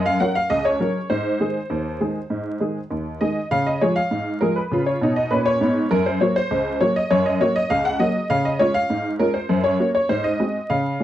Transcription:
honky-tonk piano
Already playing: F#2
0.06 F5
0.20 F#3 C#4 A#4 F#5
0.35 F5
0.50 C#2 D#5
0.65 C#5
0.80 F#3 C#4 A#4
1.10 G#2 C5
1.40 D#3 G#3 G#4
1.70 D#2
2.00 D#3 G#3 G#4
2.30 G#2
2.60 D#3 G#3 G#4
2.91 D#2
3.21 D#3 G#3 G#4 D#5
3.51 C#3 F5
3.66 D#5
3.81 F3 G#3 G#4 C#5
3.96 F5
4.11 G#2
4.41 F3 G#3 G#4 A#4
4.56 B4
4.71 C#3 F4
4.86 C#5
5.01 B2 D#4
5.16 D#5
5.31 A#2 C#4 B4
5.46 C#5
5.61 G#2 B3
5.91 F#2 A#4
6.06 C5
6.21 F#3 A#3 F#4 C#5
6.36 C5
6.51 C#2
6.81 F#3 A#3 F#4 C#5
6.96 D#5
7.11 F#2 C#5
7.26 D#5
7.41 F#3 A#3 F#4 C#5
7.56 D#5
7.70 C#2 F5
7.85 F#5
8.00 F#3 A#3 F#4 D#5
8.30 C#3 F5
8.45 D#5
8.59 G#3 C#4 F4 C#5
8.74 F5
8.90 G#2
9.19 G#3 C#4 F4 A#4
9.34 C5
9.49 F#2
9.64 C#5
9.79 A#3 C#4 F#4
9.95 C#5
10.09 G#2 C5
10.24 D#5
10.40 G#3 C4 F#4
10.70 C#3 F5
11.00 G#3 C#4

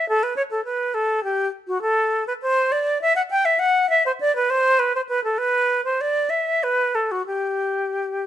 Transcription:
flute
0.09 A4
0.23 B4
0.36 C#5
0.51 A4
0.65 B4
0.94 A4
1.24 G4
1.68 F#4
1.82 A4
2.27 B4
2.42 C5
2.72 D5
3.02 E5
3.16 F#5
3.31 G5
3.45 E5
3.59 F#5
3.90 E5
4.06 C5
4.21 D5
4.36 B4
4.50 C5
4.79 B4
4.95 C5
5.09 B4
5.24 A4
5.38 B4
5.85 C5
6.01 D5
6.30 E5
6.63 B4
6.95 A4
7.12 F#4
7.26 G4

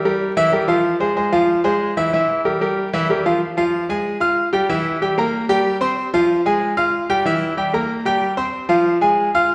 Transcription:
grand piano
0.05 G3 G4 A#4
0.37 E3 E4 E5
0.52 G3 G4 A#4
0.68 F3 F4 F5
1.00 G#3 G#4 C5
1.16 G#3 G#4 C5
1.32 F3 F4 F5
1.64 G#3 G#4 C5
1.97 E3 E4 E5
2.13 E3 E4 E5
2.45 G3 G4 A#4
2.61 G3 G4 A#4
2.93 E3 E4 E5
3.09 G3 G4 A#4
3.25 F3 F4 F5
3.57 F3 F4 F5
3.89 G#3 G#4 G#5
4.20 F4 F5 F6
4.53 G3 G4 G5
4.69 E3 E4 E5
5.02 G3 G4 G5
5.18 A#3 A#4 A#5
5.49 G3 G4 G5
5.81 C4 C5 C6
6.14 F3 F4 F5
6.46 G#3 G#4 G#5
6.77 F4 F5 F6
7.10 G3 G4 G5
7.25 E3 E4 E5
7.57 G3 G4 G5
7.74 A#3 A#4 A#5
8.05 G3 G4 G5
8.37 C4 C5 C6
8.69 F3 F4 F5
9.01 G#3 G#4 G#5
9.35 F4 F5 F6

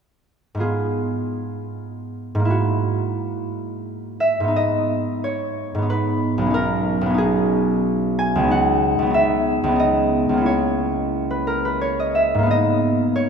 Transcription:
harp
0.55 G#2 B3
0.60 F4 G#4
2.35 G#2
2.40 A#3
2.45 E4
2.50 F#4
4.20 E5
4.40 G#2 B3
4.48 D#4
4.56 D#5
5.24 C#5
5.75 G#2 B3
5.82 D#4
5.90 B4
6.38 B1 B3
6.46 C#4
6.50 D#4 A#4
7.01 B1
7.06 B3
7.10 C#4
7.14 D#4
7.18 G#4
8.19 G#5
8.35 C#2
8.40 B3 C#4
8.48 D#4 F#5
8.99 C#2 B3
9.06 C#4 D#4
9.14 E5
9.64 C#2 B3
9.72 C#4 D#4
9.79 D#5
10.29 C#2
10.33 A#3
10.38 C#4 E4
10.46 C#5
11.31 B4
11.47 A#4
11.65 B4
11.81 C#5
12.00 D#5
12.15 E5
12.34 G#2
12.39 A#3
12.43 B3 D#4
12.51 D#5
13.16 C#5

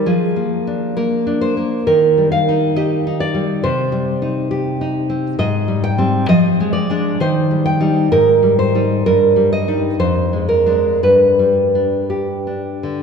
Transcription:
nylon-string guitar
0.06 F3 G#4
0.36 A#3
0.67 D4
0.97 A#3 A#4
1.27 D4
1.41 C5
1.57 A#3
1.87 D#3 A#4
2.17 G3
2.32 F5
2.49 D#4
2.76 G4 D#5
3.07 D#4
3.20 D5
3.34 G3
3.64 C3 C5
3.92 G3
4.22 D#4
4.51 G4
4.81 D#4
5.10 C4
5.39 G#2 D#5
5.68 G3
5.84 G5
5.98 G3 C4
6.29 F3 D#5
6.60 G#3
6.73 D5
6.90 G#3 D4
7.20 D#3 C5
7.51 G3
7.66 G5
7.80 G3 D#4
8.12 G#2 A#4
8.43 G3
8.59 C5
8.75 G3 D#4
9.06 G2 A#4
9.36 G3
9.53 D#5
9.68 G3 D#4
10.00 F2 C5
10.33 G#3
10.49 A#4
10.66 G#3 D4
11.03 G2 B4
11.39 G3
11.75 D4
12.10 G4
12.47 D4
12.83 D3

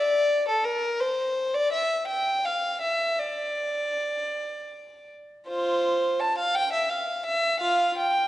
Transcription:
violin
Already playing: D5
0.49 A4
0.64 A#4
1.00 C5
1.54 D5
1.73 E5
2.08 G5
2.45 F5
2.81 E5
3.19 D5
5.48 F4 C5
6.20 A5
6.38 F5
6.55 G5
6.73 E5
6.90 F5
7.26 E5
7.61 F4 F5
7.98 G5

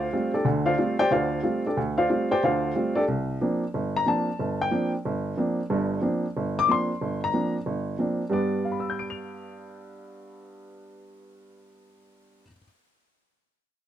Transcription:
upright piano
Already playing: F4 C5 D5 F5
0.13 G3 A3 C4 F4
0.34 D4 G4 A4 D5
0.45 D2 D3
0.66 F4 C5 D5 F5
0.78 G3 A3 C4 F4
0.99 G4 C5 D5 G5
1.11 D2 D3 F4 C5 D5 F5
1.43 G3 A3 C4 F4
1.66 D4 G4 A4 D5
1.77 D2
1.98 F4 C5 D5 F5
2.09 G3 A3 C4 F4
2.31 G4 C5 D5 G5
2.44 D2 D3 F4 C5 D5 F5
2.75 G3 A3 C4 F4
2.95 D4 G4 A4 D5
3.08 C2
3.41 F3 A#3 C4 D4
3.74 G1
3.96 A#5
4.06 F3 A#3 C4 D4 A5
4.39 G1
4.61 G5
4.71 F3 A#3 C4 D4
5.05 G1
5.37 F3 A#3 C4 D4
5.70 G1 G2
6.01 F3 A#3 C4 D4
6.37 G1
6.59 D6
6.68 F3 A#3 C4 D4 C6
7.01 G1
7.24 A#5
7.34 F3 A#3 C4 D4
7.66 G1
7.99 F3 A#3 C4 D4
8.30 G2 G3 B3 D4 D5
8.65 F5
8.72 B5
8.80 E6
8.90 G6
8.99 D7
9.10 F7

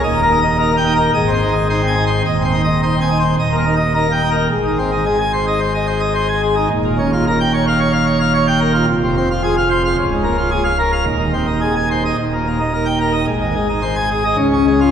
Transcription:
pipe organ
0.04 D#1 D#2 D#5
0.17 A#3
0.23 A#4
0.31 D#4
0.41 D#5
0.59 D#4 A#4
0.73 A#3
0.77 G5
0.86 D#4
0.96 A#4
1.14 G#1 G#2 D#5
1.28 C4
1.33 C5
1.43 D#4
1.52 D#5
1.70 D#4 C5
1.83 C4
1.87 G#5
1.97 D#4
2.07 C5
2.26 D#1 D#2 D#5
2.41 C4 C5
2.54 D#4
2.64 D#5
2.83 D#4 C5
2.97 C4
3.01 G#5
3.11 D#4
3.19 C5
3.39 D#1 D#2 D#5
3.52 A#3
3.58 A#4
3.66 D#4
3.76 D#5
3.94 D#4 A#4
4.09 A#3 G5
4.23 D#4
4.31 A#4
4.50 G#1 G#2
4.65 D#3
4.79 C4
4.92 D#4
5.06 G#4
5.19 G#5
5.33 C5
5.47 D#5
5.60 C5
5.74 D#5
5.87 C5
6.00 D#5
6.15 C5
6.28 G#5
6.42 G#4
6.56 D#4
6.70 D#1 D#2
6.85 A#2
6.98 C#4
7.13 F4
7.27 A#4
7.40 G5
7.54 C#5
7.68 F5
7.80 C#5
7.93 F5
8.06 C#5
8.20 F5
8.34 C#5
8.47 G5
8.60 A#4
8.74 F4
8.88 F1 F2
9.04 C3
9.17 C4
9.31 F4
9.44 G#4
9.57 F5
9.70 C5
9.85 F5
9.98 C#1 C#2
10.12 G#2
10.24 A#3
10.38 F4
10.51 G#4
10.64 F5
10.79 A#4
10.92 F5
11.05 D#1 D#2
11.19 D#3
11.33 C4
11.47 D#4
11.61 G#4
11.76 G#5
11.91 C5
12.05 D#5
12.19 D#1 D#2
12.33 A#2
12.47 A#3
12.60 D#4
12.74 A#4
12.86 G5
13.00 A#4
13.13 D#5
13.27 G#1 G#2
13.41 D#3
13.54 G#3
13.69 D#4
13.82 C5
13.96 G#5
14.10 G#4
14.25 D#5
14.37 C#2 C#3
14.53 C#4
14.67 G#3
14.81 F4

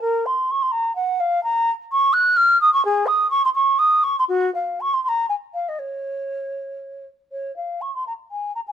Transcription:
flute
0.01 A#4
0.26 C6
0.51 C#6
0.62 C6
0.71 A#5
0.96 F#5
1.20 F5
1.43 A#5
1.92 C#6
2.13 F#6
2.36 F6
2.61 D#6
2.73 C#6
2.85 G#4
3.07 D#6
3.30 C#6
3.45 C6
3.55 C#6
3.79 D#6
4.03 C#6
4.19 C6
4.29 F#4
4.55 F5
4.81 C#6
4.93 C6
5.04 C6
5.08 A#5
5.29 G#5
5.54 F5
5.68 D#5
5.79 C#5
7.32 C#5
7.56 F5
7.81 C#6
7.95 C6
8.07 A#5
8.31 G#5
8.55 A#5
8.67 G#5

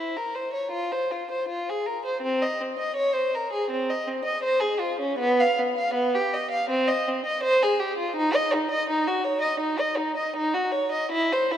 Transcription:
violin
Already playing: E4
0.16 A#4
0.35 C5
0.53 C#5
0.72 F4
0.91 C5
1.11 F4
1.31 C5
1.49 F4
1.69 G#4
1.86 A#4
2.06 C5
2.22 C4
2.42 D#5
2.61 C4
2.79 D#5
2.96 C#5
3.14 C5
3.35 A#4
3.52 G#4
3.71 C4
3.89 D#5
4.07 C4
4.25 D#5
4.44 C5
4.60 G#4
4.80 F4
5.00 C#4
5.19 B3
5.40 F5
5.59 B3
5.78 F5
5.94 B3
6.14 G4
6.33 D#5
6.51 F5
6.70 C4
6.88 D#5
7.08 C4
7.26 D#5
7.43 C5
7.63 G#4
7.80 G4
7.98 F4
8.16 D#4
8.35 D#5
8.54 D#4
8.71 D#5
8.90 D#4
9.07 F#4
9.24 C#5
9.41 D#5
9.60 D#4
9.80 D#5
9.97 D#4
10.17 D#5
10.37 D#4
10.54 F#4
10.72 C#5
10.92 D#5
11.12 E4
11.32 C5
11.51 E4

